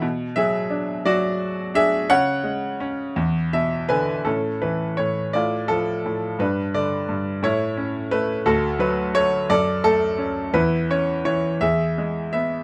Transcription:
<<
  \new Staff \with { instrumentName = "Grand piano" } { \time 6/8 \key e \mixolydian \tempo 4. = 57 << { r8 e''4 d''4 e''8 | fis''2 e''8 <b' gis''>8 | \key a \major a'8 b'8 cis''8 d''8 a'4 | b'8 d''4 cis''4 b'8 |
a'8 b'8 cis''8 d''8 a'4 | b'8 cis''8 cis''8 e''4 e''8 | } \\ { r8 gis'4 fis'4 gis'8 | cis''2 r4 | cis'4. f'4. | d'4. e'4. |
fis'4. a'4. | e'4. gis'4. | } >> }
  \new Staff \with { instrumentName = "Grand piano" } { \clef bass \time 6/8 \key e \mixolydian b,8 fis8 d'8 fis4 d'8 | cis8 gis8 cis'8 e,8 b,8 d8 | \key a \major a,8 e8 a,8 a,8 f8 a,8 | g,8 d8 g,8 a,8 cis'8 a8 |
d,8 fis8 a8 fis,8 a8 cis'8 | e,8 cis'8 e8 e,8 gis8 b8 | }
>>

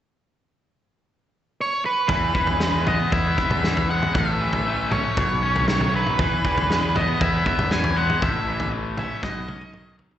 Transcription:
<<
  \new Staff \with { instrumentName = "Lead electric guitar" } { \time 4/4 \key e \major \tempo 4 = 118 r2. cis''8 b'8~ | b'4. dis''8 e''4. fis''8 | e''4. cis''4. cis''8 b'8~ | b'4. dis''8 e''8 e''8 gis''8 fis''8 |
e''4 r8 e''8 dis''4. r8 | }
  \new Staff \with { instrumentName = "Overdriven electric guitar" } { \clef bass \time 4/4 \key e \major r1 | e8 e8 gis8 b8 e'8 b8 e8 gis8 | a,8 e8 a8 cis'8 b,8 cis'8 dis8 fis8 | e8 e8 gis8 b8 e'8 b8 e8 gis8 |
a,8 e8 a8 cis'8 b,8 cis'8 dis8 fis8 | }
  \new Staff \with { instrumentName = "Picked electric bass" } { \clef bass \time 4/4 \key e \major r1 | e,8 e,4. e,8 e,4. | a,,2 b,,2 | e,8 e,4. e,8 e,4. |
a,,2 b,,2 | }
  \new DrumStaff \with { instrumentName = "Drums" } \drummode { \time 4/4 r4 r4 r4 r4 | <bd tomfh>8 bd16 tomfh16 sn8 <tomfh toml>8 bd8 bd16 <tomfh toml>16 sn16 tomfh8 toml16 | <bd tomfh>8. tomfh16 r8 <tomfh toml>8 bd8. tomfh16 sn16 tomfh8 toml16 | <bd tomfh>8 bd16 tomfh16 sn8 <tomfh toml>8 bd8 bd16 <tomfh toml>16 sn16 tomfh8 toml16 |
<bd tomfh>8. tomfh16 r8 <tomfh toml>8 <bd sn>8 tommh16 tommh16 toml8 tomfh16 tomfh16 | }
>>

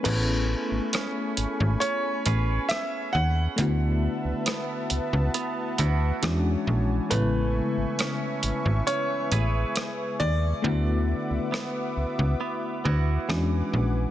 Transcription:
<<
  \new Staff \with { instrumentName = "Analog synth pad" } { \time 4/4 \key a \major \tempo 4 = 68 << { cis'''1 | a''1 | cis'''1 | d'''2. d'''4 | } \\ { <a gis'' b''>1 | <b' e'' fis''>2. <cis'' gis''>4 | <b' e''>1 | <b' e'' fis''>2. <b' fis'' gis''>4 | } >> }
  \new Staff \with { instrumentName = "Grand piano" } { \time 4/4 \key a \major b'2 cis''4 e''8 fis''8~ | fis''4. r2 r8 | b'2 cis''4. d''8~ | d''2~ d''8 r4. | }
  \new Staff \with { instrumentName = "Clean electric guitar" } { \time 4/4 \key a \major a4 cis'4 cis'8 <cis' gis' b'>4. | d4 b4 b8 <b e' fis'>8 e4 | a4 cis'4 cis'8 <gis' b'>4. | d4 b4 b8 <b e' fis'>8 e4 | }
  \new Staff \with { instrumentName = "FM electric piano" } { \time 4/4 \key a \major <b cis' e' gis'>1 | <a b e' fis'>2. <gis cis' d' fis'>4 | <cis gis b e'>1 | <a b e' fis'>2. <gis cis' d' fis'>4 | }
  \new Staff \with { instrumentName = "FM bass" } { \clef bass \time 4/4 \key a \major a,,8. gis,,16 r8 gis,,16 gis,,16 r8 a,,8 r8 dis,8 | d,8. cis,16 r8 cis,16 cis,16 r8 d,8 e,8 bes,,8 | a,,8. gis,,16 r8 gis,,16 gis,,16 r8 a,,8 r8 dis,8 | d,8. cis,16 r8 cis,16 cis,16 r8 d,8 e,8 bes,,8 | }
  \new DrumStaff \with { instrumentName = "Drums" } \drummode { \time 4/4 <cymc hh>4 <hh ss>8 hh8 hh8 hh8 <hh ss>4 | hh4 <hh ss>8 hh8 hh8 hh8 <hh ss>4 | hh4 <hh ss>8 hh8 hh8 hh8 <hh ss>4 | r4 ss4 r4 ss4 | }
>>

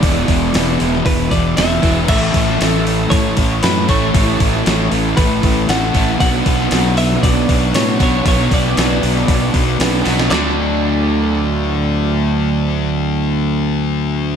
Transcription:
<<
  \new Staff \with { instrumentName = "Clean electric guitar" } { \time 4/4 \key d \major \tempo 4 = 117 d''4. r8 b'8 d''8 e''4 | e''2 cis''4 b'8 cis''8~ | cis''4. r8 b'4 fis''4 | fis''4. e''8 d''4 cis''8 cis''8 |
cis''8 d''2. r8 | d''1~ | d''1 | }
  \new Staff \with { instrumentName = "Overdriven electric guitar" } { \time 4/4 \key d \major <e gis b e'>8 <gis b e'>8 <e gis b e'>8 <gis b e'>8 <e gis b e'>8 <gis b e'>8 <e gis b e'>8 <gis b e'>8 | <a, e a cis' e'>8 <a cis' e'>8 <e a cis' e'>8 <a cis' e'>8 <a, e a cis' e'>8 <a cis' e'>8 <e a cis' e'>8 <a cis' e'>8 | <a, e a cis' e'>8 <a cis' e'>8 <e a cis' e'>8 <a cis' e'>8 <a, e a cis' e'>8 <a cis' e'>8 <e a cis' e'>8 <a cis' e'>8 | <b, fis b d' fis'>8 <b d' fis'>8 <fis b d' fis'>8 <b d' fis'>8 <b, fis b d' fis'>8 <b d' fis'>8 <fis b d' fis'>8 <b d' fis'>8 |
<b, fis b d' fis'>8 <b d' fis'>8 <fis b d' fis'>8 <b d' fis'>8 <b, fis b d' fis'>8 <b d' fis'>8 <fis b d' fis'>8 <b d' fis'>8 | <d fis a d'>1~ | <d fis a d'>1 | }
  \new Staff \with { instrumentName = "Distorted electric guitar" } { \clef bass \time 4/4 \key d \major <e, b, e>8 <b, e>8 <e, b, e>4. <b, e>8 <e, b, e>8 <b, e>8 | <a, e a>8 <e a>8 <a, e a>4. <e a>8 <a, e a>8 <e a>8 | <a, e a>8 <e a>8 <a, e a>4. <e a>8 <a, e a>8 <e a>8 | <b, fis b>8 <fis b>8 <b, fis b>4. <fis b>8 <b, fis b>8 <fis b>8 |
<b, fis b>8 <fis b>8 <b, fis b>4. <fis b>8 <b, fis b>8 <fis b>8 | <d a d'>1~ | <d a d'>1 | }
  \new Staff \with { instrumentName = "Overdriven electric guitar" } { \clef bass \time 4/4 \key d \major <e, b, e>2.~ <e, b, e>8 <e, b, e>8 | <a, e a>2.~ <a, e a>8 <a, e a>8 | <a, e a>2.~ <a, e a>8 <a, e a>8 | <b, fis b>2.~ <b, fis b>8 <b, fis b>8 |
<b, fis b>2.~ <b, fis b>8 <b, fis b>8 | <d a d'>1~ | <d a d'>1 | }
  \new Staff \with { instrumentName = "Fingered electric bass" } { \clef bass \time 4/4 \key d \major e,,8 e,,8 e,,8 e,,8 e,,8 e,,8 e,,8 e,,8 | a,,8 a,,8 a,,4 a,,8 a,,8 fis,8 a,,8 | a,,8 a,,8 a,,8 a,,8 a,,8 a,,8 a,,8 a,,8 | b,,8 b,,8 b,,4 b,,8 b,,8 a,8 b,,8 |
b,,8 b,,8 b,,8 b,,8 b,,8 b,,8 b,,8 b,,8 | d,1~ | d,1 | }
  \new DrumStaff \with { instrumentName = "Drums" } \drummode { \time 4/4 <hho bd>8 <hho bd>8 <hho sn>8 hho16 sn16 <hho bd>8 <hho bd>8 <hho sn>8 <hho bd>8 | <cymc bd>8 <hho bd>16 sn16 <hho sn>8 hho8 <hho bd>8 <hho bd>8 <hho sn>8 <hho bd>8 | <hho bd>8 <hho bd>16 sn16 <hho sn>8 hho8 <hho bd>8 <hho bd>8 <hho sn>8 <hho bd>8 | <hho bd>8 <hho bd>16 sn16 <hho sn>8 hho16 sn16 <hho bd>8 <hho bd>8 <hho sn>8 <hho bd>8 |
<hho bd>8 <hho bd>16 sn16 <hho sn>8 hho16 sn16 <hho bd>8 <hho bd>8 <hho sn>8 <hho sn>16 sn16 | <hc sn>4 r4 r4 r4 | r4 r4 r4 r4 | }
>>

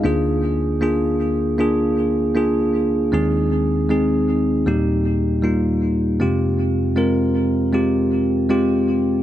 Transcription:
<<
  \new Staff \with { instrumentName = "Tine electric piano" } { \time 4/4 \key bes \dorian \tempo 4 = 78 <bes d' f' aes'>4 <bes d' f' aes'>4 <bes d' f' aes'>4 <bes d' f' aes'>4 | <aes c' ees' aes'>4 <aes c' ees' aes'>4 <g bes ees' g'>4 <g bes ees' f'>4 | <aes c' f' g'>4 <aes c' f' bes'>4 <aes c' f' g'>4 <aes c' f' g'>4 | }
  \new Staff \with { instrumentName = "Tine electric piano" } { \clef bass \time 4/4 \key bes \dorian <d, d>1 | <ees, ees>2 <ees, bes,>2 | <f, c>1 | }
>>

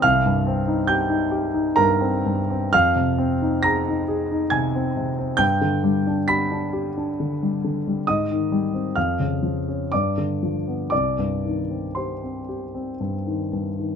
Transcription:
<<
  \new Staff \with { instrumentName = "Grand piano" } { \time 3/4 \key c \minor \tempo 4 = 66 <f'' f'''>4 <g'' g'''>4 <bes' bes''>4 | <f'' f'''>4 <bes'' bes'''>4 <aes'' aes'''>4 | <g'' g'''>4 <b'' b'''>2 | <ees'' ees'''>4 <f'' f'''>4 <d'' d'''>4 |
<d'' d'''>4 <c'' c'''>4 r4 | }
  \new Staff \with { instrumentName = "Grand piano" } { \clef bass \time 3/4 \key c \minor c,16 g,16 c'16 ees'16 g'16 ees'16 g'16 ees'16 g,16 c'16 g,16 c'16 | f,16 c16 c'16 ees'16 aes'16 ees'16 aes'16 ees'16 c16 c'16 c16 c'16 | g,16 d16 g16 d'16 g'16 d'16 g'16 d'16 d16 g16 d16 g16 | aes,16 ees16 g16 c'16 f,16 des16 f16 des'16 g,16 d16 f16 b16 |
c,16 g,16 ees16 c'16 g'16 c'16 g'16 c'16 g,16 ees16 g,16 ees16 | }
>>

